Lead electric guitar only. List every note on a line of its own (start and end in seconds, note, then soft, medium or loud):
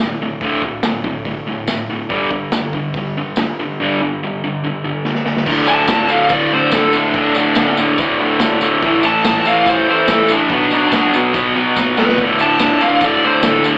5.68 6.08 A5 loud
6.10 6.30 F5 medium
6.31 6.51 D5 medium
6.52 6.72 C5 medium
6.73 6.93 A4 medium
6.93 7.75 D4 loud
9.05 9.45 A5 medium
9.47 9.66 F5 loud
9.69 9.88 C5 loud
9.90 10.09 C5 medium
10.11 10.30 A4 medium
10.31 11.11 D4 loud
12.00 12.18 B4 loud
12.41 12.81 A5 loud
12.82 13.02 F5 loud
13.04 13.23 D5 medium
13.25 13.44 C5 medium
13.46 13.65 A4 medium
13.65 13.78 D4 medium